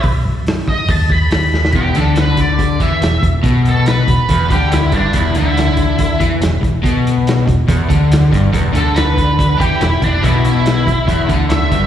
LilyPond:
<<
  \new Staff \with { instrumentName = "Lead electric guitar" } { \time 4/4 \key e \minor \tempo 4 = 141 r4. dis''8 a''8 b''8 b''4 | g'8 a'8 b'8 d''4 e''4 r8 | r8 a'8 b'4. g'8 e'8 d'8 | e'8 e'2 r4. |
r1 | r8 a'8 b'4. g'8 e'8 d'8 | e'8 e'2 r8 e''4 | }
  \new Staff \with { instrumentName = "Overdriven electric guitar" } { \clef bass \time 4/4 \key e \minor r1 | e,8 d2 e8 e,8 e,8 | b,4. e,8 e,8 d4 g,8 | e,8 d2 e8 e,8 e,8 |
b,4. e,8 e,8 d4 g,8 | e,8 d2 e8 e,8 e,8 | b,4. e,8 e,8 d4 g,8 | }
  \new Staff \with { instrumentName = "Fingered electric bass" } { \clef bass \time 4/4 \key e \minor b,,8 fis,8 fis,4 dis,4 dis,4 | e,,8 d,2 e,8 e,,8 e,,8 | b,,4. e,,8 e,,8 d,4 g,,8 | e,,8 d,2 e,8 e,,8 e,,8 |
b,,4. e,,8 e,,8 d,4 g,,8 | e,,8 d,2 e,8 e,,8 e,,8 | b,,4. e,,8 e,,8 d,4 g,,8 | }
  \new DrumStaff \with { instrumentName = "Drums" } \drummode { \time 4/4 <hho bd>4 <hho sn>8 bd8 <hho bd>8 bd8 <hho sn>8 sn16 sn16 | <hh bd>8 hh8 <hh sn>8 <hh bd>8 <hh bd>8 <hh bd>8 <hh sn>8 <hh bd>8 | <hh bd>8 hh8 <hh sn>8 <hh bd>8 <hh bd>8 <hh bd>8 <hh sn>8 <hh bd>8 | <hh bd>8 hh8 <hh sn>16 sn16 <hh bd>8 <hh bd>8 <hh bd>8 <hh sn>8 <hh bd>8 |
<hh bd>8 hh8 <hh sn>8 <hh bd>8 <hh bd>8 <hh bd>8 <hh sn>8 <hh bd>8 | <hh bd>8 hh8 <hh sn>8 <hh bd>8 <hh bd>8 <hh bd>8 <hh sn>8 <hh bd>8 | <hh bd>8 hh8 <hh sn>8 <hh bd>8 <hh bd>8 <hh bd>8 <hh sn>8 <hh bd>8 | }
>>